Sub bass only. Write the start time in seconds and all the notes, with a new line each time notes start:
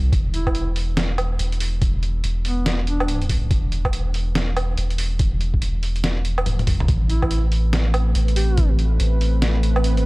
Already playing: C2
0.13 E1
1.39 E1
2.24 E1
3.51 E1
4.78 E1
5.62 E1
6.46 E1
6.89 A1
8.15 A1
9.00 A1
9.88 G#1